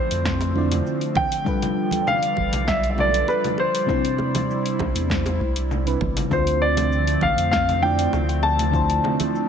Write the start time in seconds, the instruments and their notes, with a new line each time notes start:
Already playing: fm electric piano D3 C4 D4 E4 F4, analog synth pad D3 F3 A3 C4, grand piano C5
0.11 sub bass F2, open hi-hat, shaker
0.25 kick, snare, low conga, shaker
0.41 open hi-hat, high bongo, shaker
0.54 fm electric piano D3 D4 E4 F4, high conga
0.58 fm electric piano D5
0.71 open hi-hat, low conga, shaker
0.86 shaker
1.01 open hi-hat, shaker
1.15 grand piano G5, kick, low conga
1.32 open hi-hat, shaker
1.44 analog synth pad D3 G3 D5, fm electric piano G3 D4 F4 A4 B4, kick, shaker
1.62 open hi-hat, low conga, shaker
1.91 open hi-hat, low conga, shaker
2.07 grand piano F5, low conga, shaker
2.23 open hi-hat, shaker
2.37 sub bass G1, kick, low conga
2.53 sub bass B1, open hi-hat, low conga, shaker
2.67 grand piano E5, kick, snare, shaker
2.83 open hi-hat, shaker
2.91 grand piano E5
2.95 fm electric piano G3 D4 F4 A4, high conga, low conga
2.99 fm electric piano D5, grand piano D5
3.14 open hi-hat, shaker
3.28 grand piano B4, high bongo, shaker
3.44 open hi-hat, low conga, shaker
3.58 grand piano C5, high bongo
3.75 open hi-hat, shaker
3.86 fm electric piano C3 C4 D4 E4, analog synth pad C3 E4, kick, low conga, shaker
3.90 fm electric piano C5
4.05 open hi-hat, shaker
4.18 high bongo, high conga
4.35 open hi-hat, high bongo, low conga, shaker
4.50 shaker
4.66 open hi-hat, shaker
4.79 sub bass C2, kick, high bongo, low conga
4.95 sub bass E2, open hi-hat, high conga, shaker
5.10 kick, snare, shaker
5.26 open hi-hat, high bongo, low conga, shaker
5.40 sub bass C2, kick, high conga
5.56 open hi-hat, shaker
5.71 low conga, shaker
5.85 fm electric piano C3 C4 D4 E4 B4, open hi-hat, shaker
6.01 sub bass G1, kick, high conga, low conga
6.17 open hi-hat, low conga, shaker
6.30 sub bass D2, fm electric piano D3 C4 D4 F4, analog synth pad D3 F3 A3 C4, grand piano C5, kick, low conga, shaker
6.34 fm electric piano C5
6.47 open hi-hat, shaker
6.62 grand piano D5
6.77 open hi-hat, low conga, shaker
6.92 shaker
7.07 open hi-hat, shaker
7.21 sub bass A1, grand piano F5, kick, low conga
7.36 sub bass F2, open hi-hat, shaker
7.51 grand piano F5, kick, snare, shaker
7.69 open hi-hat, low conga, shaker
7.81 fm electric piano D3 D4 E4 F4, grand piano G5, high conga
7.85 fm electric piano D5
7.99 open hi-hat, shaker
8.13 sub bass D2, high bongo, low conga, shaker
8.29 open hi-hat, shaker
8.43 grand piano A5, high bongo
8.59 open hi-hat, low conga, shaker
8.71 fm electric piano D3 D4 E4 F4, kick, shaker
8.76 fm electric piano C5
8.90 open hi-hat, shaker
9.04 high bongo, low conga
9.20 open hi-hat, high bongo, low conga, shaker
9.35 shaker